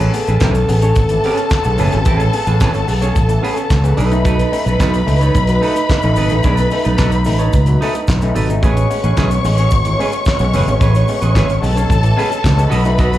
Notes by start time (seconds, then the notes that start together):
Already playing: C#3 B3 G#4 A4 B4 A5
0.00 C#4, closed hi-hat, shaker
0.14 B3 C#4 G#4, muted clean electric guitar stroke, open hi-hat, shaker
0.27 A1 C#4 G#4 B4, closed hi-hat, shaker
0.40 B1 A2 E3 C#4 G#4 B4, kick, snare, clap, closed hi-hat, shaker
0.55 muted clean electric guitar stroke, closed hi-hat, shaker
0.69 A1 B3 C#4 G#4, muted clean electric guitar stroke, open hi-hat, shaker
0.82 C#4 G#4 C#5, closed hi-hat, shaker
0.95 G#1 C#4 G#4, kick, closed hi-hat, shaker
1.09 A2 E3, muted clean electric guitar stroke, closed hi-hat, shaker
1.24 B3 C#4 G#4 B4, open hi-hat
1.38 muted clean electric guitar stroke, closed hi-hat, shaker
1.50 kick, snare, clap, closed hi-hat, shaker
1.64 B1 B3 C#4 G#4, muted clean electric guitar stroke, closed hi-hat, shaker
1.78 F#1 A2 E3 C#4 G#4 B4, open hi-hat, shaker
1.92 G#1 B3 C#4 G#4, muted clean electric guitar stroke, closed hi-hat, shaker
2.05 A1 A2 E3 C4 G#4 A4 B4, kick, closed hi-hat, shaker
2.17 C#4 G#4, closed hi-hat, shaker
2.33 B3 C#4 G#4, muted clean electric guitar stroke, open hi-hat, shaker
2.47 A1 C#4 G#4 B4, closed hi-hat, shaker
2.60 G#1 A2 E3 C#4 G#4 B4, kick, snare, clap, closed hi-hat, shaker
2.74 muted clean electric guitar stroke, closed hi-hat, shaker
2.87 B1 B3 C#4 G#4, muted clean electric guitar stroke, open hi-hat, shaker
3.02 C#4 G#4 C#5, closed hi-hat, shaker
3.16 A1 C#4 G#4, kick, closed hi-hat, shaker
3.28 A2 E3, muted clean electric guitar stroke, closed hi-hat, shaker
3.43 B3 C#4 G#4 B4, open hi-hat
3.57 muted clean electric guitar stroke, closed hi-hat, shaker
3.70 C#2, muted clean electric guitar stroke, kick, snare, clap, closed hi-hat, shaker
3.84 B3 C#4 G#4, muted clean electric guitar stroke, closed hi-hat, shaker
3.97 B1 B2 F#3 A3 D#4 A4 B4 B5, open hi-hat, shaker
4.11 A3 C#4 D#4, muted clean electric guitar stroke, closed hi-hat, shaker
4.24 B2 F#3 D#4 A4 B4, kick, closed hi-hat, shaker
4.38 C#4 D#4, closed hi-hat, shaker
4.52 A3 C#4 D#4, muted clean electric guitar stroke, open hi-hat, shaker
4.66 B1 D#4 A4 B4, closed hi-hat, shaker
4.80 B1 B2 F#3 D#4 A4 B4, kick, snare, clap, closed hi-hat, shaker
4.94 muted clean electric guitar stroke, closed hi-hat, shaker
5.06 C#2 A3 C#4 D#4, muted clean electric guitar stroke, open hi-hat, shaker
5.21 C#4 D#4 A4 C#5, closed hi-hat, shaker
5.34 B1 C#4 D#4, kick, closed hi-hat, shaker
5.47 B2 F#3, muted clean electric guitar stroke, closed hi-hat, shaker
5.61 A3 C#4 D#4 A4 B4, open hi-hat
5.76 muted clean electric guitar stroke, closed hi-hat, shaker
5.89 muted clean electric guitar stroke, kick, snare, clap, closed hi-hat, shaker
6.02 A1 A3 C#4 D#4, muted clean electric guitar stroke, closed hi-hat, shaker
6.16 G#1 B2 F#3 D#4 A4 B4, open hi-hat, shaker
6.29 A1 A3 C#4 D#4, muted clean electric guitar stroke, closed hi-hat, shaker
6.43 B1 B2 F#3 D4 A4 B4, kick, closed hi-hat, shaker
6.55 C#4 D#4, closed hi-hat, shaker
6.71 A3 C#4 D#4, muted clean electric guitar stroke, open hi-hat, shaker
6.84 B1 D#4 A4 B4, closed hi-hat, shaker
6.97 B1 B2 F#3 D#4 A4 B4, kick, snare, clap, closed hi-hat, shaker
7.11 muted clean electric guitar stroke, closed hi-hat, shaker
7.24 A1 A3 C#4 D#4, muted clean electric guitar stroke, open hi-hat, shaker
7.39 C#4 D#4 A4 C#5, closed hi-hat, shaker
7.53 C#2 C#4 D#4, kick, closed hi-hat, shaker
7.66 B2 F#3, muted clean electric guitar stroke, closed hi-hat, shaker
7.81 A3 C#4 D#4 A4 B4, open hi-hat
7.95 muted clean electric guitar stroke, closed hi-hat, shaker
8.07 B1, muted clean electric guitar stroke, kick, snare, clap, closed hi-hat, shaker
8.21 A3 C#4 D#4, muted clean electric guitar stroke, closed hi-hat, shaker
8.35 G#1 B2 F#3 D#4 A4 B4, open hi-hat, shaker
8.49 A3 C#4 D#4, muted clean electric guitar stroke, closed hi-hat, shaker
8.62 A1 A2 E3 A3 C#4 G#4 B4 C#5 C#6, kick, closed hi-hat, shaker
8.77 B3 C#4, closed hi-hat, shaker
8.90 G#3 B3 C#4, muted clean electric guitar stroke, open hi-hat, shaker
9.04 A1 C#4 G#4 B4, closed hi-hat, shaker
9.17 B1 A2 E3 C#4 G#4 B4, kick, snare, clap, closed hi-hat, shaker
9.30 muted clean electric guitar stroke, closed hi-hat, shaker
9.44 A1 G#3 B3 C#4, muted clean electric guitar stroke, open hi-hat, shaker
9.57 B3 C#4 G#4 C#5, closed hi-hat, shaker
9.70 G#1 B3 C#4, kick, closed hi-hat, shaker
9.85 A2 E3, muted clean electric guitar stroke, closed hi-hat, shaker
9.99 G#3 B3 C#4 G#4 B4, open hi-hat
10.12 muted clean electric guitar stroke, closed hi-hat, shaker
10.25 muted clean electric guitar stroke, kick, snare, clap, closed hi-hat, shaker
10.39 B1 G#3 B3 C#4, muted clean electric guitar stroke, closed hi-hat, shaker
10.54 F#1 A2 E3 C#4 G#4 B4, open hi-hat, shaker
10.68 G#1 G#3 B3 C#4, muted clean electric guitar stroke, closed hi-hat, shaker
10.81 A1 A2 E3 C#4 G#4 B4, kick, closed hi-hat, shaker
10.95 B3 C#4, closed hi-hat, shaker
11.08 G#3 B3 C#4, muted clean electric guitar stroke, open hi-hat, shaker
11.22 A1 C#4 G#4 B4, closed hi-hat, shaker
11.35 G#1 A2 E3 C#4 G#4 B4, kick, snare, clap, closed hi-hat, shaker
11.49 muted clean electric guitar stroke, closed hi-hat, shaker
11.62 B1 G#3 B3 C#4 A4 A5, muted clean electric guitar stroke, open hi-hat, shaker
11.76 B3 C#4 G#4 C#5, closed hi-hat, shaker
11.89 A1 B3 C#4, kick, closed hi-hat, shaker
12.03 A2 E3, muted clean electric guitar stroke, closed hi-hat, shaker
12.17 G#3 B3 C#4 G#4 B4, open hi-hat
12.31 muted clean electric guitar stroke, closed hi-hat, shaker
12.44 C#2, muted clean electric guitar stroke, kick, snare, clap, closed hi-hat, shaker
12.57 G#3 B3 C#4, muted clean electric guitar stroke, closed hi-hat, shaker
12.70 B1 B2 F#3 A3 D#4 F#4 A4 B4 D#5 B5, open hi-hat, shaker
12.84 A3 C#4 D#4, muted clean electric guitar stroke, closed hi-hat, shaker
12.98 B2 F#3 F#4 A4 D#5, kick, closed hi-hat, shaker
13.12 C#4 D#4, closed hi-hat, shaker